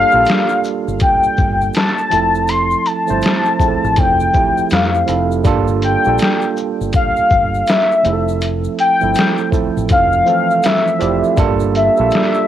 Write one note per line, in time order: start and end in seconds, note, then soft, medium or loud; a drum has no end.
0.00 0.12 G3 loud
0.00 0.13 A#3 medium
0.00 0.14 D4 loud
0.00 0.15 F4 loud
0.00 0.15 A4 loud
0.00 0.60 F5 loud
0.11 0.25 A#1 medium
0.11 1.29 G3 medium
0.11 1.30 A#3 medium
0.11 1.30 D4 medium
0.11 1.30 F4 medium
0.11 1.31 A4 medium
0.11 shaker soft
0.25 closed hi-hat medium
0.25 shaker medium
0.30 snare loud
0.49 shaker soft
0.64 shaker medium
0.64 shaker soft
0.88 0.99 G1 medium
0.88 shaker soft
0.99 1.71 G5 loud
0.99 kick loud
0.99 closed hi-hat medium
0.99 shaker medium
1.23 shaker medium
1.37 1.69 G1 medium
1.37 kick medium
1.37 shaker soft
1.61 shaker soft
1.74 2.50 A5 loud
1.74 snare loud
1.74 closed hi-hat medium
1.74 shaker medium
1.98 shaker soft
2.10 2.74 F1 medium
2.10 2.85 F3 medium
2.10 2.85 A3 medium
2.10 2.86 C4 medium
2.10 2.86 E4 medium
2.10 2.87 A4 medium
2.10 closed hi-hat soft
2.10 shaker soft
2.35 shaker soft
2.48 2.88 C6 loud
2.48 closed hi-hat medium
2.48 shaker medium
2.71 shaker soft
2.86 4.00 A5 loud
2.86 closed hi-hat soft
2.86 shaker soft
3.07 3.21 G1 medium
3.07 3.51 F3 medium
3.07 3.51 A3 medium
3.07 3.51 C4 medium
3.07 3.52 E4 medium
3.07 3.52 C5 medium
3.07 shaker soft
3.22 closed hi-hat medium
3.22 shaker medium
3.26 snare loud
3.45 shaker soft
3.58 4.22 F3 medium
3.58 4.23 A3 medium
3.58 4.23 C4 medium
3.58 4.24 E4 medium
3.58 3.69 G#4 medium
3.58 kick medium
3.58 shaker medium
3.68 4.27 A4 medium
3.85 3.95 A1 medium
3.85 shaker soft
3.96 4.28 F1 loud
3.96 4.74 G5 loud
3.96 kick medium
3.96 closed hi-hat medium
3.96 shaker medium
4.20 shaker medium
4.33 4.97 F3 medium
4.33 4.97 A3 medium
4.33 4.98 C4 medium
4.33 4.98 E4 medium
4.33 4.98 G4 medium
4.33 kick medium
4.33 shaker soft
4.58 shaker medium
4.70 5.02 F2 medium
4.70 5.32 F5 medium
4.70 snare loud
4.70 closed hi-hat medium
4.70 shaker medium
4.95 shaker soft
5.06 5.45 F1 medium
5.06 5.39 F3 medium
5.06 5.39 A3 medium
5.06 5.39 C4 medium
5.06 5.40 E4 medium
5.06 5.40 A4 medium
5.06 closed hi-hat soft
5.06 shaker soft
5.31 shaker soft
5.44 5.95 G1 loud
5.44 5.91 G3 loud
5.44 5.91 A#3 loud
5.44 5.92 D4 loud
5.44 5.92 F4 loud
5.44 5.93 A4 loud
5.44 kick loud
5.44 closed hi-hat medium
5.44 shaker medium
5.68 shaker medium
5.82 6.53 G5 loud
5.82 closed hi-hat soft
5.82 shaker soft
6.05 6.17 A#1 medium
6.05 7.22 G3 medium
6.05 7.22 A#3 medium
6.05 7.23 D4 medium
6.05 7.23 F4 medium
6.05 shaker soft
6.09 7.24 A4 medium
6.18 closed hi-hat medium
6.18 shaker medium
6.23 snare loud
6.42 shaker soft
6.57 shaker soft
6.57 shaker medium
6.81 6.92 G1 medium
6.81 shaker medium
6.93 7.70 F5 loud
6.93 kick loud
6.93 closed hi-hat medium
6.93 shaker medium
7.16 shaker medium
7.30 7.62 G1 medium
7.30 kick medium
7.30 shaker soft
7.54 shaker soft
7.67 8.42 E5 loud
7.67 snare loud
7.67 closed hi-hat medium
7.67 shaker medium
7.91 shaker soft
8.03 8.66 F1 medium
8.03 8.78 F3 medium
8.03 8.78 A3 medium
8.03 8.78 C4 medium
8.03 8.79 E4 medium
8.03 8.13 G#4 medium
8.03 closed hi-hat soft
8.03 shaker soft
8.12 8.83 A4 medium
8.28 shaker medium
8.41 closed hi-hat medium
8.41 shaker medium
8.64 shaker medium
8.79 9.49 G5 loud
8.79 closed hi-hat soft
8.79 shaker soft
9.01 9.14 G1 medium
9.01 9.44 F3 medium
9.01 9.44 A3 medium
9.01 9.45 C4 medium
9.01 9.45 E4 medium
9.01 9.45 A4 medium
9.01 shaker soft
9.15 closed hi-hat medium
9.15 shaker medium
9.19 snare loud
9.38 shaker soft
9.51 10.15 F3 medium
9.51 10.15 A3 medium
9.51 10.16 C4 medium
9.51 10.16 E4 medium
9.51 10.16 A4 medium
9.51 kick medium
9.51 shaker medium
9.51 shaker soft
9.77 9.88 A1 medium
9.77 shaker soft
9.89 10.21 F1 loud
9.89 10.67 F5 loud
9.89 kick medium
9.89 closed hi-hat medium
9.89 shaker medium
10.12 shaker soft
10.26 10.91 E3 medium
10.26 10.89 F3 medium
10.26 10.90 A3 medium
10.26 10.90 C4 medium
10.26 10.91 A4 medium
10.26 10.49 G5 medium
10.26 shaker soft
10.50 10.63 F5 medium
10.50 shaker soft
10.63 10.98 E5 medium
10.63 11.39 E5 loud
10.63 snare loud
10.63 closed hi-hat medium
10.63 shaker medium
10.87 shaker soft
10.99 11.21 F1 medium
10.99 11.31 F3 loud
10.99 11.32 A3 medium
10.99 11.32 C4 medium
10.99 11.33 E4 medium
10.99 11.33 G4 medium
10.99 11.35 D5 medium
10.99 closed hi-hat soft
10.99 shaker soft
11.24 shaker soft
11.36 11.88 G1 medium
11.36 11.83 G3 loud
11.36 11.84 A#3 loud
11.36 11.84 D4 loud
11.36 11.85 F4 loud
11.36 11.85 A4 loud
11.36 kick loud
11.36 closed hi-hat medium
11.36 shaker medium
11.60 shaker medium
11.75 12.47 E5 loud
11.75 closed hi-hat soft
11.75 shaker soft
11.97 12.10 A#1 loud
11.97 12.47 G3 medium
11.97 12.47 A#3 medium
11.97 12.47 D4 medium
11.97 12.47 F4 medium
11.97 shaker soft
12.01 12.47 A4 medium
12.11 closed hi-hat medium
12.11 shaker medium
12.15 snare loud
12.34 shaker soft